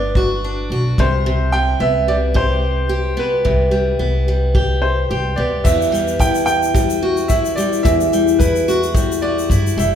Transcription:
Already playing: G1 G3 B3 D4 F#4 D5
0.15 F#4, kick
0.44 D4
0.70 B1 F#4
0.98 C2 C3 C5, kick
1.26 C3
1.52 G3 G5
1.80 C2 B3 E5
2.08 G3 D5
2.34 G4 C5, kick
2.89 G4
3.17 B3 B4
3.45 C2 C3, kick
3.71 G3
3.99 C2 B3
4.28 G3
4.55 G4, kick
4.82 C5
5.10 C2 G4
5.36 D2 B3 D5
5.64 E2 E5, kick, crash, shaker
5.82 shaker
5.92 G3, shaker
6.08 shaker
6.19 E2 E4 G5, kick, shaker
6.35 shaker
6.46 G5, shaker
6.63 shaker
6.75 G3, kick, shaker
6.90 shaker
7.03 F#4
7.17 shaker
7.28 E4 E5, kick, shaker
7.45 shaker
7.56 G3 D5, shaker
7.73 shaker
7.83 E2 E5, kick, shaker
8.01 shaker
8.13 G3, shaker
8.28 shaker
8.39 E2 E4 B4, kick, shaker
8.56 shaker
8.68 F#4, shaker
8.83 shaker
8.95 G3, kick, shaker
9.12 shaker
9.22 F#4 D5
9.39 shaker
9.50 G2 E4, kick, shaker
9.67 shaker
9.76 F#1 G3 E5, shaker

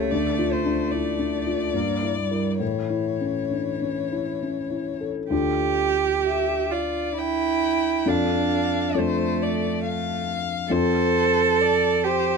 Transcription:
Already playing: A3 E4 F4 G4 A4 C#5
0.11 D2 D5
0.39 F4
0.52 C5
0.66 D4
0.91 E4 D5
1.19 D4
1.47 F4
1.74 G2 A#3
2.03 E4
2.18 G3
2.31 E4 A#4
2.60 A2 E3 C#5
2.90 E4
3.21 C#4
3.51 D4
3.82 C#4
4.12 E4
4.43 C#4
4.71 E4
5.01 A4
5.30 D2 D4 F4 G4 A4
6.25 E5
6.71 F4 D5
7.15 E4 G5
8.06 F2 D4 F4 A4 F5
8.95 F2 A3 D4 F4 A4 C5
9.42 D5
9.85 F5
10.70 F2 C4 F4 A4 C5
11.61 D5
12.04 G4 C5

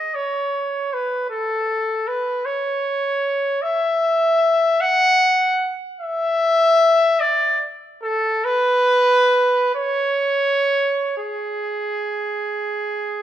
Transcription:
Already playing: D#5
0.15 C#5
0.94 B4
1.30 A4
2.08 B4
2.45 C#5
3.62 E5
4.81 F#5
6.01 E5
7.20 D5
8.02 A4
8.44 B4
9.75 C#5
11.18 G#4

